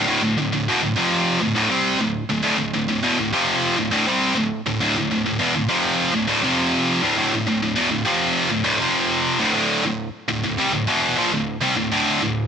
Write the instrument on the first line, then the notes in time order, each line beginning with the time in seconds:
distorted electric guitar
0.07 D2 A2
0.22 D2 A2
0.37 D2 A2
0.52 D2 A2
0.68 E2 B2
0.82 D2 A2
0.96 F2 C3 F3
1.40 D2 A2
1.55 D2 A2
1.70 C3 G3 C4
1.99 D2 A2
2.30 D2 A2
2.43 D2 A2
2.58 D2 A2
2.74 D2 A2
2.89 D2 A2
3.03 E2 B2
3.19 D2 A2
3.33 F2 C3 F3
3.77 D2 A2
3.92 D2 A2
4.08 C3 G3 C4
4.36 D2 A2
4.66 D2 A2
4.81 D2 A2
4.97 D2 A2
5.11 D2 A2
5.26 D2 A2
5.39 E2 B2
5.55 D2 A2
5.69 F2 C3 F3
6.13 D2 A2
6.27 D2 A2
6.43 F2 C3 F3
7.02 D2 A2
7.17 D2 A2
7.33 D2 A2
7.47 D2 A2
7.62 D2 A2
7.76 E2 B2
7.91 D2 A2
8.05 F2 C3 F3
8.50 D2 A2
8.64 D2 A2
8.79 F2 C3 F3
9.40 D2 A2
9.54 D2 A2 D3
9.84 D2 A2
10.29 D2 A2
10.44 D2 A2
10.58 C3 G3
10.73 D2 A2
10.87 E2 B2 E3
11.17 A#2 F3
11.33 D2 A2
11.62 C3 G3
11.77 D2 A2
11.92 D2 A2 D3
12.22 D2 A2